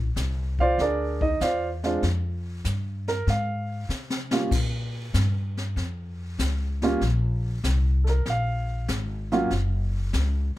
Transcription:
0.00 0.14 A#1 medium
0.16 0.76 C2 medium
0.16 kick soft
0.16 snare medium
0.16 hi-hat pedal medium
0.59 0.79 F4 medium
0.59 0.79 C5 medium
0.59 0.79 D5 medium
0.59 0.78 F5 medium
0.59 kick soft
0.78 1.39 D2 medium
0.78 1.22 D4 medium
0.78 1.22 G#4 medium
0.78 1.22 A#4 medium
0.78 1.21 D5 medium
0.78 brush sweep soft
0.78 kick soft
0.78 snare soft
1.21 1.40 D#4 medium
1.21 1.40 D#5 medium
1.21 kick soft
1.40 2.01 E2 medium
1.40 1.68 F4 medium
1.40 1.68 C5 medium
1.40 1.68 D5 medium
1.40 1.67 F5 medium
1.40 kick soft
1.40 snare medium
1.40 hi-hat pedal soft
1.83 2.01 G#3 medium
1.83 2.01 C4 medium
1.83 2.02 D4 medium
1.83 2.02 F4 medium
1.83 snare soft
2.02 2.63 F2 medium
2.02 brush sweep soft
2.02 kick soft
2.02 snare soft
2.65 3.25 G2 medium
2.65 kick soft
2.65 snare medium
2.65 hi-hat pedal medium
3.08 3.27 A#4 medium
3.08 snare soft
3.27 3.87 G#2 medium
3.27 3.87 F5 medium
3.27 brush sweep soft
3.27 kick soft
3.27 snare soft
3.89 4.50 C3 medium
3.89 snare soft
3.89 hi-hat pedal soft
4.10 snare medium
4.31 4.50 G3 medium
4.31 4.50 A#3 medium
4.31 4.50 C#4 medium
4.31 4.51 F4 medium
4.31 snare medium
4.51 5.12 A#2 medium
4.51 brush sweep soft
4.51 kick medium
4.51 snare soft
4.51 crash medium
5.14 5.74 G2 medium
5.14 kick soft
5.14 snare medium
5.14 hi-hat pedal medium
5.57 snare soft
5.76 6.37 F2 medium
5.76 brush sweep soft
5.76 kick soft
5.76 snare soft
6.39 6.99 C#2 medium
6.39 kick soft
6.39 snare medium
6.39 hi-hat pedal medium
6.82 7.00 G3 medium
6.82 7.00 A#3 medium
6.82 7.00 C#4 medium
6.82 7.00 F4 medium
6.82 snare soft
7.01 7.62 A#1 medium
7.01 brush sweep soft
7.01 kick soft
7.01 snare soft
7.64 8.24 C2 medium
7.64 kick soft
7.64 snare medium
7.64 hi-hat pedal medium
8.04 8.07 A4 soft
8.04 snare soft
8.09 8.27 A#4 medium
8.26 8.86 A#1 medium
8.26 brush sweep soft
8.26 kick soft
8.26 snare soft
8.30 8.86 F5 medium
8.88 9.49 G#1 medium
8.88 kick soft
8.88 snare medium
8.88 hi-hat pedal medium
9.32 9.49 F#3 medium
9.32 9.49 A#3 medium
9.32 9.50 C#4 medium
9.32 9.50 F4 medium
9.32 snare soft
9.50 10.11 F#1 medium
9.50 brush sweep soft
9.50 kick soft
9.50 snare soft
10.13 10.53 C#2 medium
10.13 kick soft
10.13 snare medium
10.13 hi-hat pedal medium

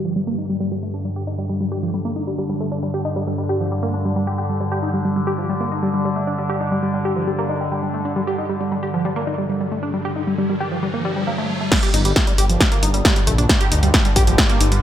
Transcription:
0.00 11.71 G2 medium
0.00 11.70 D3 medium
0.00 downlifter medium
0.05 0.15 F3 medium
0.16 0.20 G3 medium
0.27 0.38 A#3 loud
0.38 0.45 D#4 medium
0.49 0.57 G3 medium
0.60 0.70 G3 medium
0.72 0.76 G3 medium
0.83 0.90 A3 medium
0.94 1.01 D4 medium
1.05 1.09 G3 medium
1.16 1.23 G4 loud
1.27 1.34 D#4 medium
1.38 1.45 G3 medium
1.49 1.59 G3 medium
1.61 1.65 G3 medium
1.72 1.79 G4 loud
1.83 1.93 F3 medium
1.94 1.98 G3 loud
2.05 2.16 A#3 loud
2.16 2.23 D#4 medium
2.27 2.34 G3 medium
2.38 2.48 G3 medium
2.49 2.54 G3 medium
2.60 2.68 A3 medium
2.72 2.79 D4 medium
2.83 2.87 G3 medium
2.94 3.01 G4 loud
3.05 3.12 D#4 medium
3.16 3.23 G3 medium
3.27 3.37 G3 medium
3.38 3.43 G3 medium
3.49 3.57 G4 loud
3.60 3.71 F3 medium
3.72 3.76 G3 medium
3.83 3.93 A#3 loud
3.94 4.04 D4 medium
4.05 4.12 G3 medium
4.16 4.27 G3 medium
4.27 4.34 G4 loud
4.38 4.43 G4 medium
4.49 4.59 G3 medium
4.60 4.65 G3 medium
4.72 4.79 G4 loud
4.83 4.90 D#4 medium
4.94 5.01 G3 medium
5.05 5.15 G3 medium
5.16 5.20 G3 medium
5.27 5.34 G4 loud
5.38 5.49 F3 medium
5.49 5.54 G3 medium
5.61 5.71 A#3 loud
5.72 5.79 D#4 medium
5.83 5.90 G3 medium
5.94 6.04 G3 medium
6.05 6.09 G3 medium
6.16 6.23 A3 medium
6.27 6.34 D4 medium
6.38 6.43 G3 medium
6.49 6.57 G4 loud
6.61 6.68 D#4 medium
6.72 6.79 G3 medium
6.83 6.93 G3 medium
6.94 6.98 G3 medium
7.05 7.12 G4 loud
7.16 7.27 F3 medium
7.27 7.32 G3 medium
7.38 7.49 A#3 loud
7.49 7.57 D#4 medium
7.61 7.68 G3 medium
7.72 7.82 G3 medium
7.83 7.87 G3 medium
7.94 8.01 A3 medium
8.05 8.12 D4 medium
8.16 8.20 G3 medium
8.16 riser medium
8.27 8.34 G4 loud
8.38 8.46 D#4 medium
8.49 8.57 G3 medium
8.61 8.71 G3 medium
8.72 8.76 G3 medium
8.83 8.90 G4 loud
8.94 9.04 F3 medium
9.05 9.09 G3 loud
9.16 9.27 A#3 loud
9.27 9.34 D#4 medium
9.38 9.46 G3 medium
9.49 9.59 G3 medium
9.61 9.65 G3 medium
9.72 9.79 A3 medium
9.83 9.90 D4 medium
9.94 9.98 G3 medium
10.05 10.12 G4 loud
10.16 10.23 D#4 medium
10.27 10.34 G3 medium
10.38 10.48 G3 medium
10.49 10.54 G3 medium
10.61 10.68 G4 loud
10.72 10.82 F3 medium
10.83 10.87 G3 medium
10.94 11.04 A#3 loud
11.05 11.12 G3 loud
11.16 11.23 G3 medium
11.27 11.31 A#3 medium
11.38 11.48 A3 loud
11.49 11.54 A3 medium
11.61 11.68 A3 medium
11.72 14.82 G2 medium
11.72 14.82 D3 medium
11.72 11.76 G3 medium
11.72 kick loud
11.72 snare loud
11.72 closed hi-hat medium
11.72 crash loud
11.83 11.90 G4 loud
11.83 closed hi-hat medium
11.94 12.13 G1 loud
11.94 12.01 D#4 medium
11.94 open hi-hat loud
12.05 12.12 G3 medium
12.05 closed hi-hat medium
12.16 12.26 G3 medium
12.16 kick loud
12.16 snare loud
12.16 closed hi-hat medium
12.27 12.32 G3 medium
12.27 closed hi-hat medium
12.38 12.57 G1 loud
12.38 12.46 G4 loud
12.38 open hi-hat loud
12.50 12.60 F3 medium
12.50 closed hi-hat medium
12.61 12.65 G3 medium
12.61 kick loud
12.61 snare loud
12.61 closed hi-hat medium
12.72 12.82 A#3 loud
12.72 closed hi-hat medium
12.83 13.02 G1 loud
12.83 12.90 D#4 medium
12.83 open hi-hat loud
12.94 13.01 G3 medium
12.94 closed hi-hat medium
13.05 13.15 G3 medium
13.05 kick loud
13.05 snare loud
13.05 closed hi-hat medium
13.16 13.20 G3 medium
13.16 closed hi-hat medium
13.27 13.46 A#1 loud
13.27 13.34 A3 medium
13.27 open hi-hat loud
13.38 13.45 D4 medium
13.38 closed hi-hat medium
13.49 13.54 G3 medium
13.49 kick loud
13.49 snare loud
13.49 closed hi-hat medium
13.61 13.68 G4 loud
13.61 closed hi-hat medium
13.72 13.90 D2 loud
13.72 13.79 D#4 medium
13.72 open hi-hat loud
13.83 13.90 G3 medium
13.83 closed hi-hat medium
13.94 14.04 G3 medium
13.94 kick loud
13.94 snare loud
13.94 closed hi-hat medium
14.05 14.09 G3 medium
14.05 closed hi-hat medium
14.16 14.35 A#1 medium
14.16 14.23 G4 loud
14.16 kick medium
14.16 open hi-hat loud
14.27 14.38 F3 medium
14.27 closed hi-hat medium
14.38 14.43 G3 loud
14.38 kick loud
14.38 snare loud
14.38 closed hi-hat medium
14.49 14.60 A#3 loud
14.49 closed hi-hat medium
14.61 14.79 G1 loud
14.61 14.68 D#4 medium
14.61 open hi-hat loud
14.72 14.79 G3 medium
14.72 closed hi-hat medium

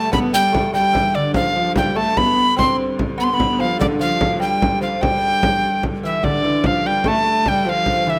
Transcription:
0.00 1.35 G2 medium
0.00 1.34 D3 medium
0.00 0.11 A3 medium
0.00 0.12 A3 medium
0.00 0.12 A5 medium
0.12 0.33 B3 medium
0.12 0.35 B3 medium
0.12 0.19 B5 medium
0.12 frame drum medium
0.33 0.54 G3 medium
0.33 0.74 G3 medium
0.33 0.72 G5 loud
0.33 frame drum soft
0.52 0.74 A3 medium
0.52 frame drum medium
0.74 0.95 G3 medium
0.74 1.16 G3 medium
0.74 1.16 G5 medium
0.93 1.15 E3 medium
0.93 frame drum medium
1.15 1.35 D3 medium
1.15 1.36 D3 medium
1.15 1.34 D5 medium
1.34 6.25 G2 medium
1.34 6.25 D3 medium
1.34 1.54 F3 medium
1.34 1.55 F3 medium
1.34 1.73 F5 medium
1.34 frame drum medium
1.56 1.76 F3 medium
1.56 1.80 F3 medium
1.76 1.97 G3 medium
1.76 1.98 G5 medium
1.76 frame drum medium
1.96 2.17 A3 medium
1.96 2.16 A3 medium
1.96 2.19 A5 medium
2.17 2.56 B3 medium
2.17 2.55 B3 medium
2.17 2.57 B5 medium
2.17 frame drum medium
2.38 frame drum soft
2.56 2.76 C4 medium
2.56 2.77 C4 medium
2.56 2.77 C6 medium
2.56 frame drum medium
2.99 frame drum medium
3.18 3.31 B3 medium
3.18 3.32 B3 medium
3.18 3.25 B5 medium
3.24 3.36 C6 medium
3.33 3.58 B3 medium
3.33 3.43 B3 medium
3.33 3.62 B5 medium
3.40 3.49 C4 medium
3.40 frame drum medium
3.47 3.63 B3 medium
3.59 3.80 F3 medium
3.59 3.81 F3 medium
3.59 3.79 F5 medium
3.59 frame drum soft
3.79 4.00 D3 medium
3.79 3.86 D5 medium
3.79 frame drum medium
3.99 4.38 F3 medium
3.99 4.43 F3 medium
3.99 4.39 F5 medium
4.21 frame drum medium
4.40 4.80 G3 medium
4.40 5.02 G3 medium
4.40 4.79 G5 medium
4.62 frame drum medium
4.81 5.01 F3 medium
4.81 5.03 F5 medium
4.81 frame drum soft
5.01 5.79 G3 medium
5.01 5.80 G3 medium
5.01 5.83 G5 medium
5.01 frame drum medium
5.23 frame drum soft
5.43 frame drum medium
5.63 frame drum soft
5.83 frame drum medium
6.03 6.22 E3 medium
6.03 6.23 E3 medium
6.03 6.26 E5 medium
6.23 8.19 G2 medium
6.23 6.44 D3 medium
6.23 6.67 D3 medium
6.23 8.19 D3 medium
6.23 6.68 D5 medium
6.23 frame drum medium
6.45 6.66 E3 medium
6.64 6.86 F3 medium
6.64 6.87 F3 medium
6.64 6.88 F5 medium
6.64 frame drum medium
6.86 7.05 G3 medium
6.86 7.07 G3 medium
6.86 7.09 G5 medium
7.04 7.25 A3 medium
7.04 7.48 A3 medium
7.04 7.50 A5 medium
7.04 frame drum medium
7.26 7.48 A3 medium
7.46 7.67 G3 medium
7.46 7.66 G3 medium
7.46 7.71 G5 medium
7.46 frame drum medium
7.66 8.08 F3 medium
7.66 8.09 F3 medium
7.66 8.11 F5 medium
7.86 frame drum medium
8.07 8.19 E3 medium
8.07 8.19 E5 medium

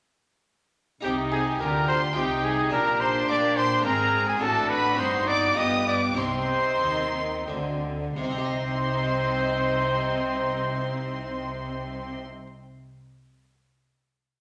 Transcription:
1.01 1.56 C2 medium
1.01 1.56 C3 medium
1.01 2.67 D#4 medium
1.01 1.56 D#4 medium
1.01 2.68 G4 medium
1.01 1.16 G4 medium
1.01 2.12 G4 medium
1.01 1.11 G5 medium
1.31 1.45 G#4 medium
1.31 1.59 G#5 medium
1.59 2.15 D2 medium
1.59 2.15 D3 medium
1.59 2.13 D3 medium
1.59 2.16 F4 medium
1.59 1.88 A#4 medium
1.59 1.88 A#5 medium
1.88 2.01 C5 medium
1.88 2.16 C6 loud
2.16 2.71 C2 medium
2.16 2.68 C3 medium
2.16 2.72 C3 medium
2.16 2.73 D#4 medium
2.16 2.71 G4 medium
2.16 2.46 G4 medium
2.16 2.45 G5 loud
2.44 2.72 G#4 medium
2.44 2.73 G#5 medium
2.70 3.29 A#1 medium
2.70 3.25 A#2 medium
2.70 3.29 A#2 medium
2.70 3.80 D4 medium
2.70 3.83 D4 medium
2.70 3.81 G4 medium
2.70 3.83 G4 medium
2.70 3.02 A#4 loud
2.70 3.00 A#5 loud
3.01 3.29 C5 loud
3.01 3.29 C6 loud
3.28 3.84 A#2 medium
3.28 3.81 A#3 medium
3.28 3.84 A#3 medium
3.28 3.58 D5 loud
3.28 3.37 D6 loud
3.57 3.84 C5 loud
3.57 3.84 C6 loud
3.81 4.37 G#3 medium
3.81 4.35 C4 medium
3.81 4.39 D#4 medium
3.81 4.26 A#5 loud
3.85 4.40 G#1 medium
3.85 4.37 G#2 medium
3.85 4.40 G#2 medium
3.85 4.41 C4 medium
3.85 4.40 G#4 medium
3.85 4.29 A#4 loud
4.27 4.43 G#4 medium
4.27 4.33 G#5 medium
4.36 4.92 C4 medium
4.36 4.95 D4 medium
4.36 4.96 F#4 medium
4.41 4.97 A1 medium
4.41 4.94 A2 medium
4.41 4.97 A2 loud
4.41 4.97 D4 medium
4.41 5.57 F#4 medium
4.41 4.71 A4 loud
4.41 4.69 A5 loud
4.70 4.98 B4 loud
4.70 4.98 B5 loud
4.94 5.53 C4 medium
4.94 5.54 D#4 medium
4.94 5.54 G4 medium
4.98 5.56 G1 medium
4.98 5.53 G2 medium
4.98 5.56 G2 medium
4.98 5.57 D#4 medium
4.98 5.29 C5 loud
4.98 5.28 C6 loud
5.28 5.59 D5 loud
5.28 5.57 D6 loud
5.52 6.14 B3 medium
5.52 6.15 F4 medium
5.52 6.15 G4 medium
5.57 6.17 G1 medium
5.57 6.14 G2 medium
5.57 6.17 G2 medium
5.57 6.18 B3 medium
5.57 6.17 G4 medium
5.57 5.87 D#5 loud
5.57 5.87 D#6 loud
5.87 6.01 D5 medium
5.87 6.19 D6 loud
6.13 8.10 C4 medium
6.13 8.10 D#4 medium
6.13 8.11 G4 medium
6.18 6.82 C2 medium
6.18 6.78 C3 medium
6.18 6.82 C3 medium
6.18 7.88 C4 medium
6.18 7.92 D#4 medium
6.18 7.79 C5 medium
6.18 7.82 C6 loud
6.82 7.46 D#2 medium
6.82 7.46 D#3 medium
6.82 7.44 D#3 medium
7.48 8.15 D2 medium
7.48 8.15 D3 medium
7.48 8.12 D3 medium
8.16 12.18 C2 medium
8.16 12.18 C3 medium
8.16 12.19 C3 medium
8.16 12.18 C4 medium
8.16 12.19 D#4 medium
8.16 12.18 C5 medium
8.16 12.19 C6 medium
8.23 12.26 C4 medium
8.31 12.33 D#4 medium
8.38 12.40 G4 medium
8.45 12.47 D#5 medium

